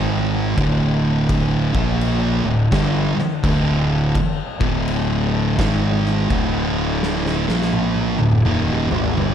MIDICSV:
0, 0, Header, 1, 6, 480
1, 0, Start_track
1, 0, Tempo, 717703
1, 859, Time_signature, 4, 2, 24, 8
1, 6249, End_track
2, 0, Start_track
2, 0, Title_t, "Distorted electric guitar"
2, 0, Program_c, 0, 30
2, 0, Note_on_c, 0, 44, 92
2, 0, Note_on_c, 0, 51, 100
2, 0, Note_on_c, 0, 56, 112
2, 374, Note_off_c, 0, 44, 0
2, 375, Note_off_c, 0, 51, 0
2, 377, Note_off_c, 0, 56, 0
2, 381, Note_on_c, 0, 38, 105
2, 382, Note_on_c, 0, 45, 99
2, 386, Note_on_c, 0, 50, 108
2, 1154, Note_off_c, 0, 38, 0
2, 1155, Note_off_c, 0, 45, 0
2, 1157, Note_off_c, 0, 50, 0
2, 1162, Note_on_c, 0, 46, 92
2, 1165, Note_on_c, 0, 53, 105
2, 1169, Note_on_c, 0, 58, 97
2, 1633, Note_off_c, 0, 46, 0
2, 1634, Note_off_c, 0, 53, 0
2, 1636, Note_off_c, 0, 58, 0
2, 1643, Note_on_c, 0, 38, 67
2, 1647, Note_on_c, 0, 45, 81
2, 1783, Note_off_c, 0, 38, 0
2, 1785, Note_off_c, 0, 45, 0
2, 1817, Note_on_c, 0, 43, 104
2, 1820, Note_on_c, 0, 50, 109
2, 1822, Note_on_c, 0, 55, 105
2, 2112, Note_off_c, 0, 43, 0
2, 2114, Note_off_c, 0, 50, 0
2, 2114, Note_off_c, 0, 55, 0
2, 2293, Note_on_c, 0, 38, 95
2, 2299, Note_on_c, 0, 45, 108
2, 2302, Note_on_c, 0, 50, 104
2, 2769, Note_off_c, 0, 38, 0
2, 2773, Note_off_c, 0, 45, 0
2, 2774, Note_off_c, 0, 50, 0
2, 3076, Note_on_c, 0, 38, 99
2, 3079, Note_on_c, 0, 45, 109
2, 3083, Note_on_c, 0, 50, 96
2, 3728, Note_off_c, 0, 38, 0
2, 3730, Note_off_c, 0, 45, 0
2, 3732, Note_off_c, 0, 50, 0
2, 3733, Note_on_c, 0, 44, 97
2, 3739, Note_on_c, 0, 51, 100
2, 3740, Note_on_c, 0, 56, 105
2, 4209, Note_off_c, 0, 44, 0
2, 4212, Note_off_c, 0, 51, 0
2, 4212, Note_off_c, 0, 56, 0
2, 4216, Note_on_c, 0, 38, 97
2, 4220, Note_on_c, 0, 45, 100
2, 4222, Note_on_c, 0, 50, 107
2, 4991, Note_off_c, 0, 38, 0
2, 4992, Note_off_c, 0, 45, 0
2, 4994, Note_off_c, 0, 50, 0
2, 5002, Note_on_c, 0, 46, 90
2, 5005, Note_on_c, 0, 53, 107
2, 5006, Note_on_c, 0, 58, 98
2, 5472, Note_off_c, 0, 46, 0
2, 5473, Note_off_c, 0, 53, 0
2, 5474, Note_off_c, 0, 58, 0
2, 5480, Note_on_c, 0, 38, 71
2, 5486, Note_on_c, 0, 45, 75
2, 5621, Note_off_c, 0, 38, 0
2, 5624, Note_off_c, 0, 45, 0
2, 5650, Note_on_c, 0, 39, 97
2, 5655, Note_on_c, 0, 46, 101
2, 5657, Note_on_c, 0, 51, 112
2, 5949, Note_off_c, 0, 39, 0
2, 5950, Note_off_c, 0, 51, 0
2, 5951, Note_off_c, 0, 46, 0
2, 5956, Note_on_c, 0, 44, 101
2, 5958, Note_on_c, 0, 51, 93
2, 5959, Note_on_c, 0, 56, 104
2, 6127, Note_off_c, 0, 44, 0
2, 6130, Note_off_c, 0, 51, 0
2, 6130, Note_on_c, 0, 43, 94
2, 6131, Note_off_c, 0, 56, 0
2, 6133, Note_on_c, 0, 50, 104
2, 6137, Note_on_c, 0, 55, 109
2, 6249, Note_off_c, 0, 43, 0
2, 6249, Note_off_c, 0, 50, 0
2, 6249, Note_off_c, 0, 55, 0
2, 6249, End_track
3, 0, Start_track
3, 0, Title_t, "Fingered electric bass"
3, 0, Program_c, 1, 33
3, 0, Note_on_c, 1, 32, 100
3, 357, Note_off_c, 1, 32, 0
3, 385, Note_on_c, 1, 26, 97
3, 1139, Note_off_c, 1, 26, 0
3, 1167, Note_on_c, 1, 34, 99
3, 1618, Note_off_c, 1, 34, 0
3, 1641, Note_on_c, 1, 26, 88
3, 1805, Note_off_c, 1, 26, 0
3, 1820, Note_on_c, 1, 31, 108
3, 2101, Note_off_c, 1, 31, 0
3, 2301, Note_on_c, 1, 26, 98
3, 2752, Note_off_c, 1, 26, 0
3, 3080, Note_on_c, 1, 26, 101
3, 3709, Note_off_c, 1, 26, 0
3, 3739, Note_on_c, 1, 32, 102
3, 4190, Note_off_c, 1, 32, 0
3, 4218, Note_on_c, 1, 26, 104
3, 4974, Note_off_c, 1, 26, 0
3, 5003, Note_on_c, 1, 34, 100
3, 5455, Note_off_c, 1, 34, 0
3, 5480, Note_on_c, 1, 26, 83
3, 5644, Note_off_c, 1, 26, 0
3, 5653, Note_on_c, 1, 27, 108
3, 5938, Note_off_c, 1, 27, 0
3, 5959, Note_on_c, 1, 32, 102
3, 6124, Note_off_c, 1, 32, 0
3, 6136, Note_on_c, 1, 31, 95
3, 6249, Note_off_c, 1, 31, 0
3, 6249, End_track
4, 0, Start_track
4, 0, Title_t, "Muted distorted electric guitar strokes"
4, 2119, Note_on_c, 9, 29, 63
4, 2186, Note_off_c, 9, 29, 0
4, 6249, End_track
5, 0, Start_track
5, 0, Title_t, "Muted fingered electric bass strokes"
5, 2120, Note_on_c, 9, 29, 44
5, 2187, Note_off_c, 9, 29, 0
5, 6249, End_track
6, 0, Start_track
6, 0, Title_t, "Drums"
6, 386, Note_on_c, 9, 36, 104
6, 388, Note_on_c, 9, 49, 64
6, 453, Note_off_c, 9, 36, 0
6, 455, Note_off_c, 9, 49, 0
6, 865, Note_on_c, 9, 36, 119
6, 868, Note_on_c, 9, 49, 75
6, 932, Note_off_c, 9, 36, 0
6, 935, Note_off_c, 9, 49, 0
6, 1168, Note_on_c, 9, 36, 115
6, 1235, Note_off_c, 9, 36, 0
6, 1345, Note_on_c, 9, 49, 69
6, 1412, Note_off_c, 9, 49, 0
6, 1820, Note_on_c, 9, 36, 99
6, 1820, Note_on_c, 9, 49, 71
6, 1825, Note_on_c, 9, 38, 110
6, 1887, Note_off_c, 9, 36, 0
6, 1887, Note_off_c, 9, 49, 0
6, 1892, Note_off_c, 9, 38, 0
6, 2130, Note_on_c, 9, 38, 32
6, 2197, Note_off_c, 9, 38, 0
6, 2299, Note_on_c, 9, 36, 112
6, 2301, Note_on_c, 9, 49, 71
6, 2366, Note_off_c, 9, 36, 0
6, 2367, Note_off_c, 9, 49, 0
6, 2777, Note_on_c, 9, 36, 114
6, 2779, Note_on_c, 9, 49, 72
6, 2844, Note_off_c, 9, 36, 0
6, 2846, Note_off_c, 9, 49, 0
6, 3081, Note_on_c, 9, 36, 116
6, 3148, Note_off_c, 9, 36, 0
6, 3261, Note_on_c, 9, 49, 68
6, 3328, Note_off_c, 9, 49, 0
6, 3737, Note_on_c, 9, 36, 111
6, 3738, Note_on_c, 9, 49, 60
6, 3743, Note_on_c, 9, 38, 113
6, 3804, Note_off_c, 9, 36, 0
6, 3805, Note_off_c, 9, 49, 0
6, 3810, Note_off_c, 9, 38, 0
6, 4049, Note_on_c, 9, 38, 34
6, 4116, Note_off_c, 9, 38, 0
6, 4216, Note_on_c, 9, 36, 105
6, 4217, Note_on_c, 9, 49, 59
6, 4283, Note_off_c, 9, 36, 0
6, 4284, Note_off_c, 9, 49, 0
6, 4701, Note_on_c, 9, 38, 70
6, 4767, Note_off_c, 9, 38, 0
6, 4855, Note_on_c, 9, 38, 61
6, 4922, Note_off_c, 9, 38, 0
6, 5006, Note_on_c, 9, 38, 83
6, 5073, Note_off_c, 9, 38, 0
6, 5094, Note_on_c, 9, 38, 66
6, 5161, Note_off_c, 9, 38, 0
6, 5172, Note_on_c, 9, 48, 85
6, 5239, Note_off_c, 9, 48, 0
6, 5322, Note_on_c, 9, 48, 69
6, 5389, Note_off_c, 9, 48, 0
6, 5475, Note_on_c, 9, 48, 94
6, 5542, Note_off_c, 9, 48, 0
6, 5562, Note_on_c, 9, 47, 83
6, 5629, Note_off_c, 9, 47, 0
6, 5653, Note_on_c, 9, 47, 88
6, 5720, Note_off_c, 9, 47, 0
6, 5806, Note_on_c, 9, 47, 81
6, 5873, Note_off_c, 9, 47, 0
6, 5959, Note_on_c, 9, 45, 98
6, 6026, Note_off_c, 9, 45, 0
6, 6048, Note_on_c, 9, 45, 92
6, 6115, Note_off_c, 9, 45, 0
6, 6135, Note_on_c, 9, 45, 105
6, 6202, Note_off_c, 9, 45, 0
6, 6249, End_track
0, 0, End_of_file